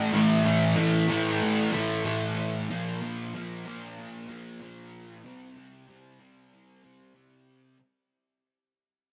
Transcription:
0, 0, Header, 1, 2, 480
1, 0, Start_track
1, 0, Tempo, 638298
1, 92, Time_signature, 4, 2, 24, 8
1, 6858, End_track
2, 0, Start_track
2, 0, Title_t, "Distorted electric guitar"
2, 0, Program_c, 0, 30
2, 0, Note_on_c, 0, 45, 70
2, 0, Note_on_c, 0, 52, 72
2, 0, Note_on_c, 0, 57, 82
2, 87, Note_off_c, 0, 45, 0
2, 93, Note_off_c, 0, 52, 0
2, 96, Note_on_c, 0, 45, 96
2, 102, Note_off_c, 0, 57, 0
2, 102, Note_on_c, 0, 52, 98
2, 111, Note_on_c, 0, 57, 99
2, 324, Note_off_c, 0, 57, 0
2, 333, Note_on_c, 0, 57, 71
2, 337, Note_off_c, 0, 52, 0
2, 346, Note_on_c, 0, 52, 61
2, 564, Note_off_c, 0, 45, 0
2, 573, Note_on_c, 0, 45, 63
2, 574, Note_off_c, 0, 52, 0
2, 581, Note_off_c, 0, 57, 0
2, 583, Note_on_c, 0, 52, 75
2, 590, Note_on_c, 0, 57, 78
2, 805, Note_off_c, 0, 57, 0
2, 814, Note_on_c, 0, 57, 71
2, 817, Note_off_c, 0, 52, 0
2, 827, Note_on_c, 0, 52, 52
2, 1055, Note_off_c, 0, 45, 0
2, 1287, Note_off_c, 0, 57, 0
2, 1297, Note_on_c, 0, 57, 66
2, 1302, Note_off_c, 0, 52, 0
2, 1311, Note_on_c, 0, 52, 50
2, 1535, Note_off_c, 0, 52, 0
2, 1537, Note_on_c, 0, 45, 70
2, 1540, Note_off_c, 0, 57, 0
2, 1544, Note_on_c, 0, 52, 75
2, 1549, Note_on_c, 0, 57, 80
2, 2004, Note_off_c, 0, 45, 0
2, 2007, Note_off_c, 0, 52, 0
2, 2010, Note_off_c, 0, 57, 0
2, 2024, Note_on_c, 0, 46, 91
2, 2032, Note_on_c, 0, 53, 93
2, 2036, Note_on_c, 0, 58, 105
2, 2260, Note_off_c, 0, 58, 0
2, 2269, Note_on_c, 0, 58, 73
2, 2273, Note_off_c, 0, 53, 0
2, 2282, Note_on_c, 0, 53, 65
2, 2502, Note_off_c, 0, 46, 0
2, 2509, Note_off_c, 0, 53, 0
2, 2514, Note_off_c, 0, 58, 0
2, 2514, Note_on_c, 0, 46, 63
2, 2518, Note_on_c, 0, 53, 76
2, 2523, Note_on_c, 0, 58, 79
2, 2740, Note_off_c, 0, 58, 0
2, 2749, Note_on_c, 0, 58, 71
2, 2754, Note_off_c, 0, 53, 0
2, 2763, Note_on_c, 0, 53, 60
2, 2987, Note_off_c, 0, 46, 0
2, 3212, Note_off_c, 0, 58, 0
2, 3221, Note_on_c, 0, 58, 67
2, 3226, Note_off_c, 0, 53, 0
2, 3235, Note_on_c, 0, 53, 52
2, 3457, Note_off_c, 0, 53, 0
2, 3462, Note_on_c, 0, 46, 73
2, 3465, Note_off_c, 0, 58, 0
2, 3466, Note_on_c, 0, 53, 71
2, 3474, Note_on_c, 0, 58, 85
2, 3926, Note_off_c, 0, 46, 0
2, 3928, Note_off_c, 0, 53, 0
2, 3932, Note_off_c, 0, 58, 0
2, 3939, Note_on_c, 0, 48, 96
2, 3943, Note_on_c, 0, 55, 92
2, 3951, Note_on_c, 0, 60, 107
2, 4172, Note_off_c, 0, 60, 0
2, 4181, Note_on_c, 0, 60, 73
2, 4185, Note_off_c, 0, 55, 0
2, 4194, Note_on_c, 0, 55, 61
2, 4415, Note_off_c, 0, 48, 0
2, 4420, Note_off_c, 0, 55, 0
2, 4424, Note_on_c, 0, 48, 68
2, 4429, Note_off_c, 0, 60, 0
2, 4430, Note_on_c, 0, 55, 68
2, 4438, Note_on_c, 0, 60, 73
2, 4648, Note_off_c, 0, 60, 0
2, 4657, Note_on_c, 0, 60, 68
2, 4663, Note_off_c, 0, 55, 0
2, 4672, Note_on_c, 0, 55, 57
2, 4901, Note_off_c, 0, 48, 0
2, 5127, Note_off_c, 0, 60, 0
2, 5136, Note_on_c, 0, 60, 65
2, 5139, Note_off_c, 0, 55, 0
2, 5148, Note_on_c, 0, 55, 48
2, 5366, Note_off_c, 0, 55, 0
2, 5368, Note_on_c, 0, 48, 68
2, 5374, Note_off_c, 0, 60, 0
2, 5375, Note_on_c, 0, 55, 71
2, 5383, Note_on_c, 0, 60, 76
2, 5837, Note_off_c, 0, 48, 0
2, 5841, Note_off_c, 0, 55, 0
2, 5845, Note_off_c, 0, 60, 0
2, 6858, End_track
0, 0, End_of_file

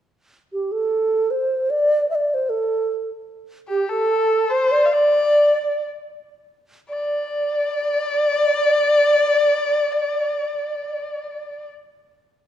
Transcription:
0, 0, Header, 1, 3, 480
1, 0, Start_track
1, 0, Tempo, 792602
1, 79, Time_signature, 2, 2, 24, 8
1, 2478, Tempo, 839161
1, 2958, Tempo, 923077
1, 3438, Tempo, 1052632
1, 3918, Tempo, 1125704
1, 6291, End_track
2, 0, Start_track
2, 0, Title_t, "Erhu"
2, 0, Program_c, 0, 110
2, 2232, Note_on_c, 0, 67, 62
2, 2357, Note_on_c, 0, 69, 75
2, 2366, Note_off_c, 0, 67, 0
2, 2713, Note_on_c, 0, 72, 82
2, 2722, Note_off_c, 0, 69, 0
2, 2916, Note_on_c, 0, 77, 55
2, 2924, Note_off_c, 0, 72, 0
2, 2957, Note_on_c, 0, 74, 84
2, 2965, Note_off_c, 0, 77, 0
2, 3438, Note_off_c, 0, 74, 0
2, 3914, Note_on_c, 0, 74, 96
2, 5958, Note_off_c, 0, 74, 0
2, 6291, End_track
3, 0, Start_track
3, 0, Title_t, "Xiao"
3, 0, Program_c, 1, 77
3, 319, Note_on_c, 1, 67, 59
3, 434, Note_on_c, 1, 69, 72
3, 443, Note_off_c, 1, 67, 0
3, 791, Note_on_c, 1, 72, 72
3, 800, Note_off_c, 1, 69, 0
3, 1031, Note_on_c, 1, 74, 90
3, 1040, Note_off_c, 1, 72, 0
3, 1270, Note_off_c, 1, 74, 0
3, 1274, Note_on_c, 1, 76, 66
3, 1302, Note_on_c, 1, 74, 72
3, 1308, Note_off_c, 1, 76, 0
3, 1394, Note_off_c, 1, 74, 0
3, 1394, Note_on_c, 1, 74, 69
3, 1417, Note_on_c, 1, 72, 75
3, 1423, Note_off_c, 1, 74, 0
3, 1511, Note_on_c, 1, 69, 74
3, 1520, Note_off_c, 1, 72, 0
3, 1875, Note_off_c, 1, 69, 0
3, 2236, Note_on_c, 1, 67, 68
3, 2348, Note_off_c, 1, 67, 0
3, 2360, Note_on_c, 1, 69, 72
3, 2693, Note_off_c, 1, 69, 0
3, 2713, Note_on_c, 1, 72, 85
3, 2835, Note_on_c, 1, 74, 95
3, 2844, Note_off_c, 1, 72, 0
3, 2959, Note_off_c, 1, 74, 0
3, 2962, Note_on_c, 1, 74, 86
3, 3419, Note_off_c, 1, 74, 0
3, 3911, Note_on_c, 1, 74, 77
3, 5955, Note_off_c, 1, 74, 0
3, 6291, End_track
0, 0, End_of_file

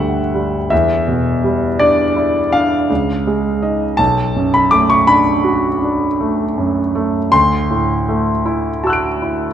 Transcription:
0, 0, Header, 1, 2, 480
1, 0, Start_track
1, 0, Tempo, 733496
1, 467, Time_signature, 9, 3, 24, 8
1, 3816, Tempo, 753769
1, 6173, End_track
2, 0, Start_track
2, 0, Title_t, "Grand piano"
2, 0, Program_c, 0, 0
2, 0, Control_c, 0, 64, 127
2, 0, Note_on_c, 0, 31, 53
2, 0, Note_on_c, 0, 38, 40
2, 0, Note_on_c, 0, 55, 43
2, 0, Note_on_c, 0, 62, 45
2, 0, Note_on_c, 0, 66, 47
2, 0, Note_on_c, 0, 76, 80
2, 0, Note_on_c, 0, 78, 69
2, 0, Note_on_c, 0, 79, 87
2, 122, Note_off_c, 0, 55, 0
2, 222, Note_on_c, 0, 55, 44
2, 369, Note_off_c, 0, 38, 0
2, 440, Note_off_c, 0, 31, 0
2, 460, Note_off_c, 0, 76, 0
2, 460, Note_on_c, 0, 76, 79
2, 463, Note_off_c, 0, 78, 0
2, 468, Note_off_c, 0, 55, 0
2, 468, Note_on_c, 0, 40, 55
2, 479, Control_c, 0, 64, 0
2, 480, Note_off_c, 0, 62, 0
2, 481, Note_off_c, 0, 79, 0
2, 483, Note_off_c, 0, 66, 0
2, 565, Control_c, 0, 64, 127
2, 705, Note_on_c, 0, 47, 42
2, 942, Note_on_c, 0, 55, 47
2, 1090, Note_off_c, 0, 47, 0
2, 1174, Note_on_c, 0, 74, 82
2, 1183, Note_off_c, 0, 76, 0
2, 1185, Note_on_c, 0, 62, 43
2, 1324, Note_off_c, 0, 55, 0
2, 1416, Note_on_c, 0, 64, 47
2, 1563, Note_off_c, 0, 62, 0
2, 1652, Note_off_c, 0, 74, 0
2, 1652, Note_on_c, 0, 77, 82
2, 1659, Note_on_c, 0, 62, 47
2, 1798, Note_off_c, 0, 64, 0
2, 1871, Note_off_c, 0, 40, 0
2, 1897, Note_off_c, 0, 62, 0
2, 1897, Note_on_c, 0, 37, 49
2, 1908, Control_c, 0, 64, 0
2, 2013, Control_c, 0, 64, 127
2, 2142, Note_on_c, 0, 56, 45
2, 2373, Note_on_c, 0, 63, 38
2, 2373, Note_on_c, 0, 75, 45
2, 2518, Note_off_c, 0, 56, 0
2, 2587, Note_off_c, 0, 75, 0
2, 2588, Note_off_c, 0, 63, 0
2, 2589, Note_off_c, 0, 37, 0
2, 2599, Note_on_c, 0, 81, 86
2, 2608, Note_off_c, 0, 77, 0
2, 2610, Note_on_c, 0, 35, 57
2, 2620, Control_c, 0, 64, 0
2, 2717, Control_c, 0, 64, 127
2, 2855, Note_on_c, 0, 42, 45
2, 2970, Note_off_c, 0, 81, 0
2, 2970, Note_on_c, 0, 83, 81
2, 3082, Note_on_c, 0, 86, 85
2, 3087, Note_on_c, 0, 57, 45
2, 3094, Note_off_c, 0, 83, 0
2, 3204, Note_on_c, 0, 85, 88
2, 3210, Note_off_c, 0, 86, 0
2, 3242, Note_off_c, 0, 42, 0
2, 3320, Note_on_c, 0, 83, 93
2, 3327, Note_on_c, 0, 62, 47
2, 3330, Note_off_c, 0, 85, 0
2, 3474, Note_off_c, 0, 57, 0
2, 3561, Note_on_c, 0, 66, 49
2, 3714, Note_off_c, 0, 62, 0
2, 3809, Note_on_c, 0, 62, 44
2, 3952, Note_off_c, 0, 66, 0
2, 4054, Note_on_c, 0, 57, 44
2, 4193, Note_off_c, 0, 62, 0
2, 4291, Note_on_c, 0, 42, 48
2, 4430, Note_off_c, 0, 57, 0
2, 4530, Note_on_c, 0, 57, 50
2, 4667, Note_off_c, 0, 42, 0
2, 4736, Note_off_c, 0, 35, 0
2, 4754, Note_off_c, 0, 83, 0
2, 4762, Note_on_c, 0, 84, 99
2, 4764, Note_off_c, 0, 57, 0
2, 4768, Note_on_c, 0, 38, 56
2, 4774, Control_c, 0, 64, 0
2, 4876, Control_c, 0, 64, 127
2, 5009, Note_on_c, 0, 45, 46
2, 5253, Note_on_c, 0, 57, 45
2, 5393, Note_off_c, 0, 45, 0
2, 5488, Note_on_c, 0, 64, 55
2, 5634, Note_off_c, 0, 57, 0
2, 5729, Note_on_c, 0, 81, 43
2, 5731, Note_on_c, 0, 66, 48
2, 5751, Note_on_c, 0, 88, 45
2, 5768, Note_on_c, 0, 90, 43
2, 5789, Note_on_c, 0, 98, 43
2, 5874, Note_off_c, 0, 64, 0
2, 5976, Note_on_c, 0, 64, 46
2, 6119, Note_off_c, 0, 66, 0
2, 6173, Note_off_c, 0, 38, 0
2, 6173, Note_off_c, 0, 64, 0
2, 6173, Note_off_c, 0, 81, 0
2, 6173, Note_off_c, 0, 84, 0
2, 6173, Note_off_c, 0, 88, 0
2, 6173, Note_off_c, 0, 90, 0
2, 6173, Note_off_c, 0, 98, 0
2, 6173, End_track
0, 0, End_of_file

